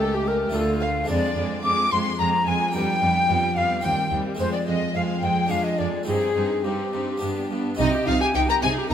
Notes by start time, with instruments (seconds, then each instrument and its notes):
Already playing: harpsichord C#2 A3 E4 G4, cello section C#2, viola section A3, violin section G4
0.00 violin section A4, flute A4
0.14 violin section G4, flute G4
0.27 violin section A#4, flute A#4
0.50 harpsichord A3 D4 F4
0.54 harpsichord D2, cello section D2, violin section F4 A4, flute A4
0.81 violin section F5, flute F5
1.04 harpsichord G#3 D4 C5
1.08 harpsichord F2, cello section F2, viola section G#3, violin section C4 D5, flute D5
1.36 harpsichord F2, cello section F2, viola section G#3, violin section C4
1.64 harpsichord F2, cello section F2, viola section G#3, violin section C4 D6, flute D6
1.91 harpsichord F2, cello section F2, viola section G#3, violin section C4 C6, flute C6
2.19 harpsichord F2, cello section F2, viola section G#3, violin section C4 A#5, flute A#5
2.46 harpsichord F2, cello section F2, viola section G#3, violin section C4 G#5, flute G#5
2.72 harpsichord F2 D4 B4, cello section F2, viola section G3, violin section B3 G5, flute G5
3.02 harpsichord F2, cello section F2, viola section G3, violin section B3
3.28 harpsichord F2, cello section F2, viola section G3, violin section B3
3.56 harpsichord F2, cello section F2, viola section G3, violin section B3 F5, flute F5
3.81 harpsichord D#2 C4 C5, cello section D#2, viola section G3, violin section C4 G5, flute G5
4.11 harpsichord D#2, cello section D#2, viola section G3, violin section C4
4.35 harpsichord G#3 C4 C5
4.40 harpsichord F2, cello section F2, viola section G#3, violin section C4 C5, flute C5
4.53 violin section D5, flute D5
4.67 harpsichord F2, cello section F2, viola section G#3, violin section C4 D#5, flute D#5
4.95 harpsichord F2, cello section F2, viola section G#3, violin section C4 F5, flute F5
5.22 harpsichord F2, cello section F2, viola section G#3, violin section C4 G5, flute G5
5.46 harpsichord G#3 D4 G#4
5.51 harpsichord F2, cello section F2, viola section G#3, violin section D4 F5, flute F5
5.64 flute D#5, violin section D#5
5.78 harpsichord F2, cello section F2, viola section G#3, violin section D4 D5, flute D5
6.03 harpsichord C4 D#4 G4, viola section C4, flute G#4, violin section G#4
6.08 harpsichord G2, cello section G2, violin section D#4
6.36 harpsichord G2, cello section G2, viola section C4, violin section D#4
6.64 harpsichord G2, cello section G2, viola section C4, violin section D#4 G4, flute G4
6.93 cello section G2, harpsichord G2, viola section C4, violin section D#4
7.18 harpsichord B3 D4 G4
7.22 cello section G2, harpsichord G2, viola section B3, violin section D4
7.51 cello section G2, harpsichord G2, viola section B3, violin section D4
7.75 harpsichord C4 D#4 G4, violin section D#4, flute D#5
7.79 double bass section C2, cello section C3, harpsichord C3, viola section D#4, violin section D#5
7.93 viola section G4
8.06 double bass section C2, harpsichord C3, cello section C3, viola section D#4, violin section F4 F5, flute F5
8.20 viola section G4, violin section G#4 G#5, flute G#5
8.34 double bass section C2, harpsichord C3, cello section C3, viola section D#4, violin section G4 G5, flute G5
8.49 viola section G4, violin section A#4 A#5, flute A#5
8.62 double bass section C2, harpsichord C3, cello section C3, viola section D#4, violin section G#4 G#5, flute G#5
8.78 viola section G4
8.90 cello section C3, harpsichord C3, violin section A#4